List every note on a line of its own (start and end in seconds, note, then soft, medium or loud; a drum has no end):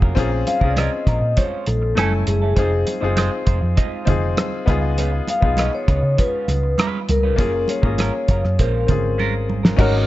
0.00 0.13 F1 medium
0.00 0.14 F#3 soft
0.00 0.19 A#3 medium
0.00 0.16 C#4 medium
0.00 0.14 C#4 soft
0.00 0.18 F4 medium
0.00 0.14 F4 soft
0.00 0.19 F#4 medium
0.00 0.19 G#4 medium
0.00 0.13 A#4 medium
0.00 kick medium
0.15 0.43 A#1 medium
0.15 0.31 G#3 medium
0.15 0.50 C4 loud
0.15 0.50 C#4 medium
0.15 0.32 C#4 medium
0.15 0.31 F4 medium
0.15 0.51 F4 medium
0.15 0.52 G#4 loud
0.15 0.31 A#4 medium
0.15 kick medium
0.15 closed hi-hat medium
0.15 muted conga soft
0.32 muted clean electric guitar stroke soft
0.47 0.71 F5 medium
0.47 muted clean electric guitar stroke soft
0.47 closed hi-hat medium
0.47 muted conga soft
0.60 0.87 C2 medium
0.60 0.74 G#3 soft
0.60 1.51 C4 medium
0.60 1.52 C#4 medium
0.60 0.74 C#4 soft
0.60 0.73 F4 soft
0.60 1.52 F4 medium
0.60 0.73 A#4 soft
0.60 kick medium
0.64 1.53 G#4 medium
0.70 0.77 D5 medium
0.76 0.91 G#3 medium
0.76 0.91 C#4 medium
0.76 0.91 F4 medium
0.76 0.90 A#4 medium
0.76 1.33 D#5 medium
0.76 cross-stick medium
0.76 closed hi-hat medium
0.76 high conga medium
0.92 muted clean electric guitar stroke soft
1.07 1.20 A#1 medium
1.07 1.18 G#3 soft
1.07 1.19 C#4 soft
1.07 1.19 F4 soft
1.07 1.19 A#4 medium
1.07 kick medium
1.07 closed hi-hat medium
1.21 1.35 A#2 medium
1.21 muted clean electric guitar stroke soft
1.36 1.64 G#3 medium
1.36 1.65 C#4 medium
1.36 1.65 F4 medium
1.36 1.65 C5 medium
1.36 1.65 C#5 medium
1.36 kick medium
1.36 closed hi-hat medium
1.36 muted conga soft
1.66 1.93 A#1 medium
1.66 2.23 A4 medium
1.66 muted clean electric guitar stroke soft
1.66 closed hi-hat medium
1.66 muted conga soft
1.82 muted clean electric guitar stroke soft
1.95 2.23 F#1 medium
1.95 2.44 A3 medium
1.95 2.11 A3 medium
1.95 2.45 C#4 medium
1.95 2.12 C#4 medium
1.95 2.12 E4 medium
1.95 2.46 E4 medium
1.95 2.12 A4 medium
1.95 2.46 G#5 medium
1.95 cross-stick loud
1.95 closed hi-hat medium
1.95 high conga medium
2.27 2.53 F#1 medium
2.27 2.84 G#4 medium
2.27 muted clean electric guitar stroke soft
2.27 closed hi-hat medium
2.27 high conga medium
2.42 2.54 A3 soft
2.42 2.54 C#4 soft
2.42 2.54 E4 soft
2.42 2.53 A4 soft
2.56 2.83 F1 medium
2.56 2.71 G#3 medium
2.56 2.90 C4 medium
2.56 2.91 D#4 medium
2.56 2.72 D#4 medium
2.56 2.71 F4 medium
2.56 2.92 F4 medium
2.56 2.92 G#4 medium
2.56 2.71 C5 medium
2.56 kick medium
2.56 closed hi-hat medium
2.56 muted conga soft
2.72 muted clean electric guitar stroke soft
2.86 muted clean electric guitar stroke soft
2.86 closed hi-hat medium
2.86 muted conga soft
3.01 3.28 F#1 medium
3.01 3.14 G#3 soft
3.01 3.80 C4 medium
3.01 3.81 D#4 medium
3.01 3.14 D#4 soft
3.01 3.14 F4 soft
3.01 3.81 F4 medium
3.01 3.82 G#4 medium
3.01 3.13 C5 soft
3.16 3.31 G#3 medium
3.16 3.31 D#4 medium
3.16 3.31 F4 medium
3.16 3.30 C5 medium
3.16 cross-stick medium
3.16 closed hi-hat medium
3.16 high conga medium
3.31 muted clean electric guitar stroke soft
3.45 3.60 F1 medium
3.45 3.58 G#3 medium
3.45 3.58 D#4 medium
3.45 3.59 F4 medium
3.45 3.59 C5 medium
3.45 kick medium
3.45 closed hi-hat medium
3.61 3.75 F2 medium
3.61 muted clean electric guitar stroke soft
3.76 4.04 G#3 medium
3.76 4.05 D#4 medium
3.76 4.05 F4 medium
3.76 4.05 D#5 medium
3.76 kick medium
3.76 closed hi-hat medium
3.76 muted conga soft
4.05 4.33 F1 medium
4.05 4.67 C4 medium
4.05 4.65 D#4 medium
4.05 4.67 F4 medium
4.05 4.68 G#4 medium
4.05 muted clean electric guitar stroke soft
4.05 kick medium
4.05 closed hi-hat medium
4.05 muted conga soft
4.05 low conga medium
4.21 muted clean electric guitar stroke soft
4.36 muted clean electric guitar stroke soft
4.36 cross-stick loud
4.36 closed hi-hat medium
4.36 high conga medium
4.66 5.20 C#2 medium
4.66 4.79 G#3 medium
4.66 5.27 B3 medium
4.66 4.79 C#4 medium
4.66 5.28 D#4 medium
4.66 4.79 F4 medium
4.66 5.28 F4 medium
4.66 5.29 G#4 medium
4.66 4.80 B4 medium
4.66 kick medium
4.66 closed hi-hat medium
4.66 high conga medium
4.83 muted clean electric guitar stroke soft
4.97 5.12 G#3 medium
4.97 5.13 C#4 medium
4.97 5.12 F4 medium
4.97 5.11 B4 medium
4.97 closed hi-hat medium
4.97 muted conga soft
5.12 muted clean electric guitar stroke soft
5.27 5.60 F5 medium
5.27 muted clean electric guitar stroke soft
5.27 closed hi-hat medium
5.27 muted conga soft
5.41 5.69 B1 medium
5.41 5.55 G#3 soft
5.41 6.32 B3 medium
5.41 5.55 C#4 soft
5.41 6.32 D#4 medium
5.41 5.55 F4 soft
5.41 6.33 F4 medium
5.41 6.34 G#4 medium
5.41 5.54 B4 soft
5.41 kick medium
5.57 5.72 G#3 medium
5.57 5.72 C#4 medium
5.57 5.71 F4 medium
5.57 5.71 B4 medium
5.57 5.74 D#5 medium
5.57 cross-stick medium
5.57 closed hi-hat medium
5.57 high conga medium
5.72 6.20 C#5 medium
5.72 muted clean electric guitar stroke soft
5.87 6.01 C#2 medium
5.87 5.99 G#3 soft
5.87 5.99 C#4 soft
5.87 6.00 F4 medium
5.87 6.00 B4 medium
5.87 kick medium
5.87 closed hi-hat medium
6.02 6.16 C#3 medium
6.02 muted clean electric guitar stroke soft
6.17 6.45 G#3 medium
6.17 6.46 C#4 medium
6.17 6.46 F4 medium
6.17 6.75 B4 medium
6.17 6.46 C#5 medium
6.17 kick medium
6.17 closed hi-hat medium
6.48 6.74 C#2 medium
6.48 muted clean electric guitar stroke soft
6.48 cross-stick soft
6.48 closed hi-hat medium
6.48 muted conga soft
6.63 muted clean electric guitar stroke soft
6.78 6.98 G#3 medium
6.78 6.99 C#4 medium
6.78 6.99 F4 medium
6.78 6.99 B4 medium
6.78 cross-stick loud
6.78 closed hi-hat medium
6.78 high conga medium
7.09 7.39 C#2 medium
7.09 7.66 A#4 medium
7.09 muted clean electric guitar stroke soft
7.09 closed hi-hat medium
7.09 high conga medium
7.23 7.35 G#3 soft
7.23 7.35 C#4 medium
7.23 7.35 F4 medium
7.23 7.35 B4 medium
7.36 7.64 F#1 medium
7.36 7.53 F#3 medium
7.36 7.71 A#3 medium
7.36 7.72 C#4 medium
7.36 7.53 C#4 medium
7.36 7.53 F4 medium
7.36 7.72 F4 medium
7.36 7.53 A#4 medium
7.36 kick medium
7.36 closed hi-hat medium
7.36 muted conga soft
7.40 7.73 G#4 medium
7.54 muted clean electric guitar stroke soft
7.68 8.62 C#5 medium
7.68 muted clean electric guitar stroke soft
7.68 closed hi-hat medium
7.68 muted conga soft
7.82 8.09 G#1 medium
7.82 7.96 F#3 soft
7.82 8.58 A#3 medium
7.82 8.58 C#4 medium
7.82 7.96 C#4 soft
7.82 8.59 F4 medium
7.82 7.95 F4 soft
7.82 8.60 G#4 medium
7.82 7.95 A#4 soft
7.82 kick medium
7.98 8.13 F#3 medium
7.98 8.13 C#4 medium
7.98 8.13 F4 medium
7.98 8.12 A#4 medium
7.98 cross-stick medium
7.98 closed hi-hat medium
7.98 high conga medium
8.14 muted clean electric guitar stroke soft
8.28 8.42 F#1 medium
8.28 8.40 F#3 medium
8.28 8.41 C#4 soft
8.28 8.41 F4 medium
8.28 8.41 A#4 medium
8.28 kick medium
8.28 closed hi-hat medium
8.44 8.57 F#2 medium
8.44 muted clean electric guitar stroke soft
8.44 cross-stick soft
8.59 8.85 A#1 medium
8.59 8.87 G#3 medium
8.59 8.87 C#4 medium
8.59 8.87 F4 medium
8.59 9.46 A#4 medium
8.59 8.87 C5 medium
8.59 kick medium
8.59 closed hi-hat medium
8.87 9.75 G#1 medium
8.87 9.55 C4 medium
8.87 9.56 C#4 medium
8.87 9.56 F4 medium
8.87 9.57 G#4 medium
8.87 muted clean electric guitar stroke soft
8.87 kick medium
8.87 cross-stick soft
8.87 closed hi-hat medium
8.87 muted conga soft
8.87 low conga medium
9.04 muted clean electric guitar stroke soft
9.18 9.33 G#3 medium
9.18 9.33 C#4 medium
9.18 9.34 F4 medium
9.18 9.34 A#4 medium
9.18 high conga medium
9.49 muted clean electric guitar stroke soft
9.49 high conga medium
9.63 9.76 G#3 soft
9.63 9.76 C#4 soft
9.63 9.75 F4 soft
9.63 9.75 A#4 soft
9.63 snare medium
9.76 10.05 G#1 loud
9.76 9.93 G#3 medium
9.76 10.07 C#4 medium
9.76 9.93 C#4 medium
9.76 10.07 D#4 medium
9.76 10.07 F#4 medium
9.76 9.94 F#4 medium
9.76 9.94 A#4 medium
9.76 10.07 A#4 medium
9.76 kick loud
9.76 crash medium
9.76 muted conga soft
9.81 10.07 C#5 medium